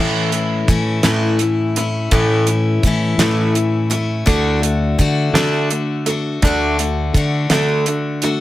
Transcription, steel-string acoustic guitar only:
0.00 0.68 A2 medium
0.00 0.68 E3 medium
0.00 0.69 A3 medium
0.00 0.69 C#4 medium
0.00 0.69 E4 medium
0.69 1.04 E3 medium
0.69 1.05 A3 medium
0.69 1.03 C#4 medium
0.69 1.03 E4 medium
1.04 1.77 A2 medium
1.04 1.77 E3 medium
1.04 1.79 A3 medium
1.04 1.76 C#4 medium
1.04 1.76 E4 medium
1.77 2.11 A3 soft
1.77 2.12 C#4 soft
1.77 2.12 E4 medium
2.11 2.83 A2 medium
2.11 2.84 E3 medium
2.11 2.86 A3 medium
2.11 2.84 C#4 medium
2.11 2.84 E4 medium
2.85 3.19 E3 medium
2.85 3.19 A3 medium
2.85 3.18 C#4 medium
2.85 3.18 E4 medium
3.19 3.92 A2 medium
3.19 3.92 E3 medium
3.19 3.93 A3 medium
3.19 3.91 C#4 medium
3.19 3.89 E4 medium
3.90 4.26 A3 soft
3.90 4.27 C#4 medium
3.90 4.26 E4 medium
4.26 4.97 D3 medium
4.26 4.98 A3 medium
4.26 4.99 D4 medium
4.26 4.99 F#4 medium
4.99 5.35 D3 medium
4.99 5.35 A3 medium
4.99 5.35 D4 medium
4.99 5.34 F#4 medium
5.35 6.08 D3 medium
5.35 6.08 A3 medium
5.35 6.07 D4 medium
5.35 6.06 F#4 medium
6.07 6.43 A3 soft
6.07 6.44 D4 medium
6.07 6.43 F#4 medium
6.45 7.14 D3 medium
6.45 7.15 A3 medium
6.45 7.16 D4 medium
6.45 7.16 F#4 medium
7.15 7.50 D3 medium
7.15 7.51 A3 medium
7.15 7.51 D4 medium
7.15 7.52 F#4 medium
7.54 8.24 D3 medium
7.54 8.24 A3 medium
7.54 8.23 D4 medium
7.54 8.22 F#4 medium
8.23 8.40 A3 soft
8.23 8.40 D4 soft
8.23 8.40 F#4 medium

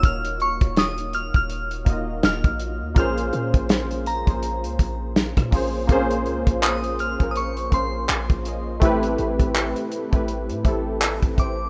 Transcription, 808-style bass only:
0.04 0.59 D#1 loud
0.61 1.32 D#1 loud
1.35 1.84 D#1 loud
1.87 2.22 D#1 loud
2.24 2.44 D#1 loud
2.44 2.83 A#1 loud
2.81 2.96 D#2 loud
2.96 3.31 A#1 loud
3.33 3.53 A#2 loud
3.54 4.24 A#1 loud
4.27 4.66 A#1 loud
4.64 4.79 C#2 loud
4.79 5.35 A#1 loud
5.37 5.52 A#2 loud
5.53 5.88 A#1 loud
5.89 6.27 A#1 loud
6.26 6.46 C#2 medium
6.47 7.17 A#1 medium
7.20 7.70 A#1 medium
7.72 8.07 A#1 loud
8.09 8.29 A#1 loud
8.30 8.80 A#1 loud
8.82 9.17 A1 loud
9.19 9.39 A1 loud
9.40 9.75 A1 medium
10.13 10.51 A1 loud
10.50 10.64 A2 loud
10.65 11.20 A1 loud
11.23 11.37 A1 loud
11.38 11.70 A1 loud

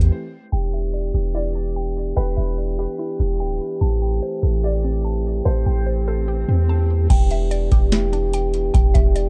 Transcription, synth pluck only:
0.52 1.75 G5 loud
0.74 1.97 E5 medium
0.94 2.17 D5 medium
1.14 2.37 G4 medium
1.35 2.58 E4 medium
1.55 2.79 D4 medium
1.76 2.15 G5 medium
2.16 3.39 G5 loud
2.37 3.60 E5 medium
2.58 3.81 D5 medium
2.79 3.81 G4 medium
2.99 3.81 E4 medium
3.20 3.81 D4 medium
3.40 3.81 G5 loud
3.81 5.03 A5 loud
4.02 5.25 G5 medium
4.22 5.46 C5 medium
4.43 5.66 A4 medium
4.63 5.87 G4 medium
4.84 6.07 C4 medium
5.05 5.44 A5 loud
5.46 6.68 A5 loud
5.66 6.89 G5 medium
5.86 7.10 C5 medium
6.08 7.10 A4 medium
6.28 7.10 G4 medium
6.49 7.10 C4 medium
6.69 7.10 A5 loud
7.10 8.33 G5 loud
7.31 8.54 E5 medium
7.51 8.74 D5 loud
7.72 8.95 G4 medium
7.92 9.16 E4 medium
8.13 9.29 D4 medium
8.34 8.73 G5 loud
8.74 9.29 G5 loud
8.94 9.29 E5 medium
9.16 9.29 D5 medium

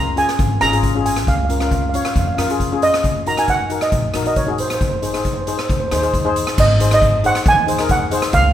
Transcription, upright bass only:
0.00 0.20 C#2 medium
0.39 0.56 G#1 medium
0.62 1.27 G#1 medium
1.27 1.96 C#2 medium
2.16 2.33 F2 medium
2.38 3.05 F2 medium
3.05 3.73 D#2 medium
3.92 4.09 A#1 medium
4.14 4.81 A#1 medium
4.81 5.49 G#1 medium
5.70 5.87 D#2 medium
5.92 6.43 D#2 medium
6.58 7.26 G#1 loud
7.46 8.14 D#2 medium
8.33 8.53 C#2 loud

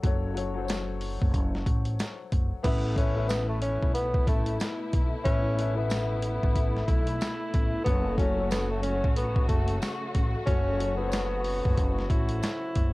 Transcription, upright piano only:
0.03 0.29 F#3 medium
0.03 0.29 F#4 medium
0.03 0.30 A4 medium
0.07 0.31 C#5 loud
0.34 0.49 F#3 medium
0.34 0.50 F#4 medium
0.34 0.51 A4 medium
0.38 0.51 C#5 loud
0.54 1.49 F#3 medium
0.54 1.50 F#4 medium
0.54 1.50 A4 medium
0.58 0.62 C5 medium
0.65 1.54 C#5 loud
2.63 2.89 A2 medium
2.63 2.90 A3 medium
2.63 2.90 B4 medium
2.67 2.91 E5 loud
2.95 3.10 A2 medium
2.95 3.11 A3 medium
2.95 3.12 B4 medium
2.99 3.12 E5 loud
3.14 4.09 A2 medium
3.14 4.10 A3 medium
3.14 4.11 B4 medium
3.18 4.11 E5 loud
5.23 5.50 A2 medium
5.23 5.50 A3 medium
5.23 5.51 B4 medium
5.27 5.52 E5 loud
5.56 5.71 A2 loud
5.56 5.72 A3 medium
5.56 5.73 B4 medium
5.60 5.73 E5 loud
5.74 6.70 A2 medium
5.74 6.70 A3 medium
5.74 6.71 B4 medium
5.78 6.72 E5 loud
7.86 8.11 F#3 medium
7.86 8.12 F#4 medium
7.86 8.13 A4 medium
7.90 8.13 C#5 medium
8.17 8.32 F#3 medium
8.17 8.33 F#4 medium
8.17 8.34 A4 medium
8.21 8.34 C#5 loud
8.36 9.31 F#3 medium
8.36 9.32 F#4 medium
8.36 9.33 A4 medium
8.40 9.33 C#5 loud
10.46 10.72 F#3 medium
10.46 10.73 F#4 medium
10.46 10.73 A4 medium
10.50 10.74 C#5 loud
10.77 10.93 F#3 medium
10.77 10.93 F#4 medium
10.77 10.94 A4 medium
10.81 10.95 C#5 loud
10.98 11.92 F#3 medium
10.98 11.93 F#4 medium
10.98 11.94 A4 medium
11.02 11.06 C5 medium
11.08 11.98 C#5 loud

